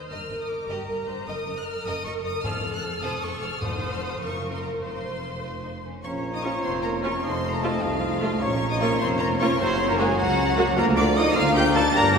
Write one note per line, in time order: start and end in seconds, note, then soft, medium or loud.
0.00 0.10 C5 medium
0.10 0.18 G1 medium
0.10 0.19 G2 medium
0.10 0.29 A#4 medium
0.10 0.68 A#4 medium
0.10 0.29 D#5 medium
0.10 0.40 F6 medium
0.30 0.38 G1 soft
0.30 0.38 G2 medium
0.30 0.38 A#4 soft
0.30 0.38 D#5 medium
0.42 0.50 D#6 medium
0.49 0.69 D6 medium
0.69 0.77 G1 medium
0.69 0.77 G2 medium
0.69 0.88 G4 medium
0.69 0.87 A#4 medium
0.69 0.87 D#5 medium
0.69 1.27 A#5 medium
0.88 0.96 G1 medium
0.88 0.96 G2 medium
0.88 1.07 A#4 medium
0.88 0.97 A#4 medium
0.88 0.96 D#5 medium
1.07 1.15 G1 medium
1.07 1.15 G2 medium
1.07 1.16 A#4 medium
1.07 1.27 C5 medium
1.07 1.16 D#5 medium
1.27 1.35 F#1 medium
1.27 1.35 F#2 medium
1.27 2.42 A#4 medium
1.27 1.46 A#4 medium
1.27 1.46 D#5 medium
1.27 1.57 D#6 medium
1.46 1.55 F#1 medium
1.46 1.54 F#2 medium
1.46 1.55 A#4 medium
1.46 1.55 D#5 medium
1.57 1.67 F#6 medium
1.66 1.86 F6 medium
1.86 1.94 F#1 medium
1.86 1.94 F#2 medium
1.86 2.04 A#4 medium
1.86 2.04 D#5 medium
1.86 2.05 D#6 loud
2.05 2.14 F#1 medium
2.05 2.13 F#2 medium
2.05 2.14 A#4 medium
2.05 2.14 D#5 medium
2.05 2.13 C#6 loud
2.24 2.32 F#1 medium
2.24 2.32 F#2 medium
2.24 2.32 A#4 medium
2.24 2.32 D#5 medium
2.24 2.44 D#6 loud
2.44 2.52 F1 medium
2.44 2.52 F2 medium
2.44 2.99 F2 medium
2.44 3.60 A4 medium
2.44 2.62 A4 medium
2.44 2.62 C5 medium
2.44 2.73 F6 loud
2.63 2.72 F1 medium
2.63 2.71 F2 medium
2.63 2.72 A4 medium
2.63 2.72 C5 medium
2.74 2.83 F#6 loud
2.83 3.03 F6 medium
3.02 3.11 F1 medium
3.02 3.10 F2 medium
3.02 3.21 A4 medium
3.02 3.21 C5 medium
3.02 3.22 D#6 loud
3.22 3.31 F1 medium
3.22 3.31 F2 medium
3.22 3.30 A4 medium
3.22 3.30 C5 medium
3.22 3.42 C#6 loud
3.42 3.50 F1 medium
3.42 3.50 F2 medium
3.42 3.50 A4 medium
3.42 3.50 C5 medium
3.42 3.62 F6 loud
3.61 4.18 F1 medium
3.61 4.18 F2 medium
3.61 4.17 F#4 medium
3.61 4.18 A4 medium
3.61 4.21 C5 medium
3.61 3.92 D#6 medium
3.93 4.02 F6 medium
4.01 4.21 D#6 loud
4.21 4.83 F#1 medium
4.21 4.83 F#2 medium
4.21 4.82 F4 medium
4.21 4.81 A#4 medium
4.21 4.51 C#6 medium
4.53 4.63 C6 medium
4.62 4.70 A#5 medium
4.82 5.82 F1 medium
4.82 5.82 F2 medium
4.82 5.42 F4 medium
4.82 5.42 A#4 medium
4.82 5.74 C5 medium
4.82 5.82 C6 medium
5.43 5.51 F4 medium
5.64 5.72 D#4 medium
5.84 6.04 C#4 medium
6.04 6.54 A#1 medium
6.04 7.19 F3 medium
6.04 7.19 A#3 medium
6.04 6.32 C#4 medium
6.04 7.19 F4 medium
6.04 6.32 C#5 medium
6.04 7.20 C#5 medium
6.04 7.19 A#5 medium
6.04 6.12 C#6 medium
6.33 6.44 D#4 medium
6.33 6.44 D#5 medium
6.33 6.43 D#5 medium
6.33 6.44 D#6 medium
6.43 6.64 C#4 medium
6.43 6.53 C#4 medium
6.43 6.53 F4 medium
6.43 6.64 C#5 medium
6.43 6.65 C#5 medium
6.43 6.63 C#6 medium
6.63 7.14 F1 medium
6.63 6.83 C4 medium
6.63 6.83 C5 medium
6.63 6.71 C6 medium
6.83 7.03 A#3 medium
6.83 7.03 A#4 medium
6.83 6.92 A#4 medium
6.83 6.91 A#5 loud
7.03 7.23 C#4 medium
7.03 7.13 C#4 medium
7.03 7.13 F4 medium
7.03 7.11 C#5 medium
7.03 7.25 C#5 medium
7.03 7.23 C#6 medium
7.22 7.73 F1 medium
7.22 7.82 F3 medium
7.22 8.42 A3 medium
7.22 7.53 C4 medium
7.22 8.42 D#4 medium
7.22 7.52 C5 medium
7.22 7.55 C5 medium
7.22 7.81 D#5 medium
7.22 7.81 A5 medium
7.22 7.53 C6 loud
7.52 7.63 A#3 medium
7.52 7.62 A#4 medium
7.52 7.65 A#4 medium
7.52 7.63 A#5 loud
7.62 7.82 A3 medium
7.62 7.72 A3 medium
7.62 7.72 F4 medium
7.62 7.82 A4 medium
7.62 7.82 A5 loud
7.82 8.32 C2 medium
7.82 8.40 F3 medium
7.82 8.41 F3 medium
7.82 8.42 F4 medium
7.82 8.41 F4 medium
7.82 8.43 D#5 medium
7.82 8.42 F5 loud
7.82 8.41 A5 medium
8.22 8.31 A3 medium
8.22 8.31 F4 medium
8.41 8.91 A#1 loud
8.41 8.91 A#1 medium
8.41 9.58 F3 medium
8.41 10.74 A#3 medium
8.41 8.71 C#4 loud
8.41 10.78 C#4 medium
8.41 8.55 C#5 loud
8.41 9.60 C#5 medium
8.41 8.71 C#5 medium
8.41 9.58 A#5 loud
8.41 8.71 C#6 loud
8.71 8.75 D#4 medium
8.71 8.81 D#5 medium
8.71 8.82 D#5 loud
8.71 8.81 D#6 loud
8.80 8.90 A#3 medium
8.80 9.01 C#4 loud
8.80 8.90 F4 medium
8.80 9.01 C#5 medium
8.80 9.00 C#5 medium
8.80 9.00 C#6 loud
9.00 9.50 F1 loud
9.00 9.21 C4 loud
9.00 9.23 C5 loud
9.00 9.21 C5 loud
9.00 9.08 C6 loud
9.19 9.40 A#3 loud
9.19 9.42 A#4 medium
9.19 9.41 A#4 loud
9.19 9.27 A#5 loud
9.39 9.50 A#3 loud
9.39 9.60 C#4 loud
9.39 9.50 F4 medium
9.39 9.62 C#5 loud
9.39 9.60 C#5 loud
9.39 9.59 C#6 loud
9.59 10.09 F#1 loud
9.59 10.10 F#1 loud
9.59 10.18 F#3 medium
9.59 9.90 C4 loud
9.59 9.89 C5 loud
9.59 9.69 C5 loud
9.59 10.18 C#5 medium
9.59 10.18 A#5 loud
9.59 9.89 C6 loud
9.89 9.99 A#3 loud
9.89 10.00 A#4 loud
9.89 9.94 A#4 loud
9.89 10.00 A#5 loud
9.98 10.19 G#3 loud
9.98 10.08 A#3 loud
9.98 10.08 F#4 loud
9.98 10.18 G#4 loud
9.98 10.07 G#4 loud
9.98 10.19 G#5 loud
10.18 10.68 C#2 loud
10.18 10.76 F#3 medium
10.18 10.77 F#3 loud
10.18 10.79 F#4 loud
10.18 10.77 F#4 loud
10.18 10.77 C#5 medium
10.18 10.76 F#5 loud
10.18 10.77 A#5 loud
10.58 10.67 A#3 loud
10.58 10.67 F#4 loud
10.77 11.29 D2 loud
10.77 11.35 F3 loud
10.77 10.97 A#3 loud
10.77 10.86 A#3 loud
10.77 11.93 A#3 medium
10.77 12.19 D4 loud
10.77 10.86 F4 loud
10.77 10.85 A#4 loud
10.77 10.96 A#4 loud
10.77 11.35 D5 medium
10.77 10.85 A#5 loud
10.77 11.35 A#5 loud
10.96 11.05 A#3 medium
10.96 11.04 D4 loud
10.96 11.05 F4 medium
10.96 11.16 D5 loud
10.96 11.18 D5 loud
10.96 11.05 D6 loud
11.16 11.25 A#3 medium
11.16 11.36 D#4 loud
11.16 11.25 F4 medium
11.16 11.36 D#5 loud
11.16 11.36 D#6 loud
11.36 11.88 D2 loud
11.36 11.78 F3 loud
11.36 11.45 A#3 loud
11.36 11.56 F4 loud
11.36 11.45 F4 loud
11.36 11.94 D5 loud
11.36 11.55 F5 loud
11.36 11.56 F5 loud
11.36 11.94 A#5 loud
11.36 11.56 F6 loud
11.55 11.64 A#3 medium
11.55 11.64 F4 medium
11.55 11.63 G4 loud
11.55 11.65 G5 loud
11.55 11.76 G5 loud
11.55 11.75 G6 loud
11.75 11.83 A#3 loud
11.75 11.83 F4 loud
11.75 11.83 A4 loud
11.75 11.95 A5 loud
11.75 11.85 A5 loud
11.75 11.95 A6 loud
11.94 12.19 G1 loud
11.94 12.19 G2 loud
11.94 12.19 G3 loud
11.94 12.03 D4 loud
11.94 12.03 G4 loud
11.94 12.19 A#4 loud
11.94 12.19 D5 loud
11.94 12.19 A#5 loud
11.94 12.09 A#5 loud
11.94 12.19 A#6 loud
12.15 12.19 D4 medium
12.15 12.19 G4 medium